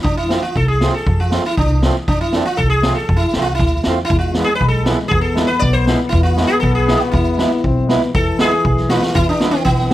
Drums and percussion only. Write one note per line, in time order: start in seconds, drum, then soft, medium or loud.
0.05 kick medium
0.30 snare medium
0.56 kick medium
0.81 snare medium
1.07 kick medium
1.32 snare medium
1.57 kick medium
1.83 snare loud
2.08 kick medium
2.33 snare medium
2.59 kick medium
2.83 snare loud
3.09 kick medium
3.33 snare medium
3.59 kick medium
3.59 snare soft
3.84 snare medium
4.10 kick medium
4.34 snare medium
4.61 kick medium
4.86 snare medium
5.12 kick medium
5.37 snare medium
5.62 kick medium
5.62 snare soft
5.87 snare medium
6.13 kick medium
6.37 snare medium
6.63 kick medium
6.88 snare medium
7.13 kick medium
7.39 snare medium
7.64 kick medium
7.89 snare medium
8.15 kick medium
8.39 snare loud
8.65 kick medium
8.77 snare soft
8.89 snare loud
9.03 snare medium
9.15 kick medium
9.40 snare medium
9.66 kick medium
9.79 snare soft